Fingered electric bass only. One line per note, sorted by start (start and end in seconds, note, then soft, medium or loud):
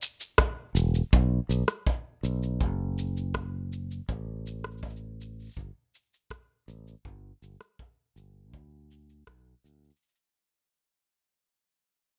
0.75 1.01 E1 medium
1.13 1.39 B1 medium
1.49 1.62 B1 medium
2.23 2.62 B1 medium
2.61 4.00 F#1 medium
4.09 5.48 A1 medium
5.57 5.70 G1 medium
6.68 6.94 A1 medium
7.05 7.31 G1 medium
7.42 7.55 G1 medium
8.16 8.53 G1 medium
8.53 9.27 D2 medium
9.27 9.53 B1 medium
9.64 9.90 D2 medium